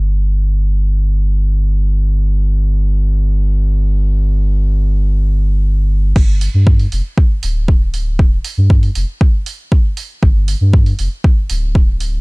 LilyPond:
<<
  \new Staff \with { instrumentName = "Sub bass" } { \clef bass \time 4/4 \key c \mixolydian \tempo 4 = 118 g,,1~ | g,,1~ | g,,1 | r8. g,8. f,,16 r8. d,,4.~ |
d,,8 r16 g,8. f,,16 r2 r16 | g,,8. g,8. f,,16 r8. d,,4. | }
  \new DrumStaff \with { instrumentName = "Drums" } \drummode { \time 4/4 r4 r4 r4 r4 | r4 r4 r4 r4 | r4 r4 r4 r4 | <cymc bd>8 hho8 bd16 hho16 hho8 bd8 hho8 bd8 hho8 |
bd8 hho8 bd16 hho16 hho8 bd8 hho8 bd8 hho8 | bd8 hho8 bd16 hho16 hho8 bd8 hho8 bd8 hho8 | }
>>